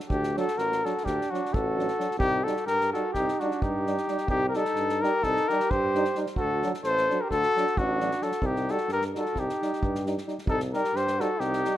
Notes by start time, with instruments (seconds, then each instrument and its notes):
0.09 tuba D2, trumpet D4, cornet G4, kick
0.23 snare
0.35 euphonium F#3, trombone D4, trumpet F#4, cornet A4, snare
0.48 snare
0.55 tuba A1, trumpet F#4, cornet A#4, snare
0.72 snare
0.84 euphonium F#3, trombone D4, trumpet F#4, cornet A4, snare
0.98 snare
1.04 tuba D2, trumpet D4, cornet G4, kick, snare
1.21 snare
1.31 euphonium F#3, trumpet D4, trombone D4, cornet F#4, snare
1.45 snare
1.52 tuba A1, trumpet F#4, cornet A4, kick
1.76 euphonium F#3, trombone D4, snare
1.88 snare
1.98 euphonium F#3, trombone D4, snare
2.11 snare
2.18 tuba C2, trumpet D#4, cornet G4, kick
2.44 euphonium G3, trombone D#4, trumpet F#4, cornet A4, snare
2.57 snare
2.66 tuba G2, trumpet G4, cornet A#4, snare
2.81 snare
2.93 euphonium G3, trombone D#4, trumpet F#4, cornet A4, snare
3.13 tuba C2, trumpet D#4, cornet G4, kick, snare
3.28 snare
3.40 euphonium G3, trumpet D4, trombone D#4, cornet F#4, snare
3.51 snare
3.61 tuba G2, trumpet D#4, cornet G4, kick
3.87 euphonium G3, trombone D#4, snare
3.97 snare
4.08 euphonium G3, trombone D#4, snare
4.18 snare
4.27 tuba C2, trumpet D#4, cornet G4, kick
4.47 trumpet G4, cornet A#4
4.54 euphonium G3, trombone D#4, trumpet D#4, cornet A4, snare
4.65 snare
4.75 tuba G2, snare
4.89 snare
5.01 euphonium G3, trombone D#4, trumpet G4, cornet A#4, snare
5.23 tuba C2, trumpet D#4, cornet A4, kick, snare
5.36 snare
5.48 euphonium G3, trombone D#4, trumpet G4, cornet A#4, snare
5.60 snare
5.70 tuba G2, trumpet G4, cornet C5, kick
5.95 euphonium G3, trombone D#4, snare
6.05 snare
6.15 euphonium G3, trombone D#4, snare
6.26 snare
6.36 tuba D2, trumpet F#4, cornet A4, kick
6.62 euphonium F#3, trombone D4, snare
6.74 snare
6.83 tuba A1, trumpet A4, cornet C5, snare
6.97 snare
7.10 euphonium F#3, trombone D4, snare
7.21 trumpet G4, cornet A#4
7.30 tuba D2, trumpet F#4, cornet A4, kick, snare
7.42 snare
7.56 euphonium F#3, trombone D4, snare
7.67 snare
7.76 tuba A1, trumpet D4, cornet F#4, kick
8.00 euphonium F#3, trombone D4, snare
8.11 snare
8.22 euphonium F#3, trombone D4, trumpet F#4, cornet A4, snare
8.32 snare
8.42 tuba C2, trumpet D#4, kick
8.46 cornet G4
8.56 snare
8.67 euphonium G3, trombone D#4, trumpet F#4, cornet A4, snare
8.78 snare
8.88 tuba G2, trumpet G4, snare
8.93 cornet A#4
9.02 snare
9.15 euphonium G3, trombone D#4, trumpet F#4, cornet A4, snare
9.26 snare
9.34 tuba C2, trumpet D#4, kick, snare
9.40 cornet G4
9.49 snare
9.62 euphonium G3, trombone D#4, snare
9.73 snare
9.82 tuba G2, kick
9.95 snare
10.05 euphonium G3, trombone D#4, snare
10.18 snare
10.27 euphonium G3, trombone D#4, snare
10.38 snare
10.46 tuba C2, trumpet D#4, cornet A4, kick
10.60 snare
10.73 euphonium G3, trombone D#4, trumpet G4, cornet A#4, snare
10.85 snare
10.94 tuba G2, trumpet G4, cornet C5, snare
11.07 snare
11.18 euphonium G3, trombone D#4, trumpet F#4, cornet A4, snare
11.39 tuba C2, trumpet D#4, cornet G4, snare
11.53 snare
11.64 euphonium G3, trombone D#4, snare